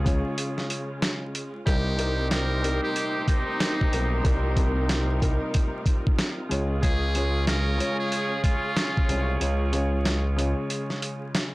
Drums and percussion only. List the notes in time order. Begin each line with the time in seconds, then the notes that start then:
0.06 kick, closed hi-hat
0.38 closed hi-hat
0.58 snare
0.70 closed hi-hat
1.02 snare, closed hi-hat
1.35 closed hi-hat
1.67 kick, closed hi-hat
1.99 closed hi-hat
2.31 snare, closed hi-hat
2.64 closed hi-hat
2.96 closed hi-hat
3.28 kick, closed hi-hat
3.60 snare, closed hi-hat
3.81 kick
3.93 closed hi-hat
4.25 kick, closed hi-hat
4.57 kick, closed hi-hat
4.89 snare, closed hi-hat
5.22 kick, closed hi-hat
5.54 kick, closed hi-hat
5.86 kick, closed hi-hat
6.07 kick
6.19 snare, closed hi-hat
6.51 closed hi-hat
6.83 kick, closed hi-hat
7.15 closed hi-hat
7.47 snare, closed hi-hat
7.80 closed hi-hat
8.12 closed hi-hat
8.44 kick, closed hi-hat
8.77 snare, closed hi-hat
8.97 kick
9.09 closed hi-hat
9.41 closed hi-hat
9.73 closed hi-hat
10.05 snare, closed hi-hat
10.39 closed hi-hat
10.70 closed hi-hat
10.90 snare
11.02 closed hi-hat
11.35 snare, closed hi-hat